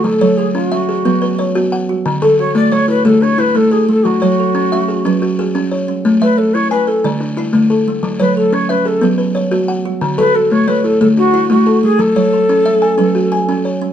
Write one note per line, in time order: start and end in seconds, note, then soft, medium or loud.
0.00 0.21 A3 medium
0.00 0.21 A4 medium
0.00 0.38 A4 loud
0.04 0.38 F#3 medium
0.21 0.55 F#3 medium
0.21 0.72 C#5 medium
0.36 0.53 G#4 medium
0.36 0.88 A4 medium
0.53 0.88 C#4 medium
0.53 0.66 F4 medium
0.66 1.50 F#4 medium
0.72 1.05 C#4 medium
0.72 1.22 E5 medium
0.89 1.22 G#4 medium
1.05 1.22 F#3 medium
1.05 1.39 B3 medium
1.05 1.39 B4 medium
1.22 1.72 B4 medium
1.39 1.89 C#5 medium
1.55 1.89 B3 medium
1.55 1.89 F#4 medium
1.72 2.22 F#5 medium
1.89 2.22 F#4 medium
2.06 2.39 D3 loud
2.22 2.55 D3 medium
2.22 2.72 A4 medium
2.22 2.38 A4 medium
2.38 2.89 F#4 medium
2.38 2.54 C#5 loud
2.55 2.89 A3 medium
2.55 2.73 D5 loud
2.71 3.05 A3 medium
2.71 2.88 C#5 loud
2.71 3.22 C#5 medium
2.88 3.37 E4 medium
2.88 3.04 B4 loud
3.05 3.39 D3 medium
3.05 3.38 A3 medium
3.05 3.55 G#4 medium
3.05 3.23 A4 medium
3.21 3.72 D4 medium
3.21 3.40 C#5 loud
3.38 3.88 E4 medium
3.38 3.57 B4 loud
3.55 3.88 A3 medium
3.55 3.87 A3 medium
3.55 3.73 A4 medium
3.71 3.88 G#4 medium
3.71 4.22 A4 medium
3.88 4.22 A3 medium
3.88 4.06 A4 loud
4.05 4.38 F#3 medium
4.05 5.38 F#4 medium
4.22 4.55 F#3 medium
4.22 4.72 C#5 medium
4.39 4.89 A4 medium
4.55 4.88 C#4 medium
4.72 5.06 C#4 medium
4.72 5.22 E5 medium
4.88 5.38 G#4 medium
5.05 5.39 F#3 medium
5.05 5.38 C#4 medium
5.05 5.56 B4 medium
5.22 5.72 F#4 medium
5.39 5.88 G#4 medium
5.55 5.88 C#4 medium
5.55 5.87 C#4 medium
5.72 6.21 C#5 medium
5.88 6.21 C#4 medium
6.05 6.38 A3 medium
6.22 6.55 A3 medium
6.22 6.38 B4 medium
6.22 6.71 E5 medium
6.37 6.55 A4 medium
6.37 6.88 C#5 medium
6.53 6.88 E4 medium
6.53 6.70 C#5 loud
6.70 7.04 E4 medium
6.70 6.88 B4 medium
6.70 7.21 G#5 medium
6.87 7.04 A4 medium
6.87 7.20 B4 medium
7.04 7.37 D3 medium
7.04 7.21 A3 medium
7.04 7.38 D5 medium
7.21 7.70 D4 medium
7.37 7.87 E4 medium
7.53 7.87 D3 medium
7.53 7.86 A3 medium
7.70 8.20 A4 medium
7.88 8.20 A3 medium
8.03 8.36 F#3 medium
8.19 8.53 F#3 medium
8.19 8.35 B4 medium
8.19 8.69 C#5 medium
8.37 8.54 A4 medium
8.37 8.86 A4 medium
8.53 8.86 C#4 medium
8.53 8.71 C#5 medium
8.69 9.03 C#4 medium
8.69 8.88 B4 loud
8.69 9.19 E5 medium
8.85 9.19 G#4 medium
8.85 9.03 A4 medium
9.01 9.19 F#3 medium
9.01 9.35 B3 medium
9.01 9.36 B4 medium
9.18 9.68 B4 medium
9.35 9.85 C#5 medium
9.35 9.86 C#5 medium
9.51 9.85 B3 medium
9.51 9.85 F#4 medium
9.68 10.18 F#5 medium
9.85 10.18 F#4 medium
10.01 10.35 D3 medium
10.18 10.52 D3 medium
10.18 10.68 A4 medium
10.18 10.36 B4 medium
10.34 10.85 F#4 medium
10.34 10.52 A4 medium
10.51 10.85 A3 medium
10.51 10.69 C#5 loud
10.67 11.01 A3 medium
10.67 10.86 B4 loud
10.67 11.17 C#5 medium
10.84 11.32 E4 medium
10.84 11.00 A4 medium
11.01 11.34 D3 medium
11.01 11.34 A3 medium
11.01 11.51 G#4 medium
11.01 11.07 A4 medium
11.17 11.67 D4 medium
11.17 11.48 F#4 loud
11.34 11.83 E4 medium
11.50 11.83 A3 medium
11.50 11.82 A3 medium
11.50 11.81 F#4 medium
11.67 12.16 A4 medium
11.83 12.16 A3 medium
11.83 12.01 G#4 medium
11.99 12.33 F#3 medium
11.99 13.65 A4 loud
12.16 12.49 F#3 medium
12.16 12.66 C#5 medium
12.33 12.83 A4 medium
12.49 12.82 C#4 medium
12.66 12.99 C#4 medium
12.66 13.15 E5 medium
12.82 13.31 G#5 medium
12.98 13.32 F#3 medium
12.98 13.31 C#4 medium
12.98 13.48 B4 medium
13.15 13.65 F#4 medium
13.32 13.81 G#5 medium
13.32 13.82 G#5 medium
13.49 13.80 C#4 medium
13.49 13.82 C#4 medium
13.65 13.93 C#5 medium
13.82 13.93 C#4 medium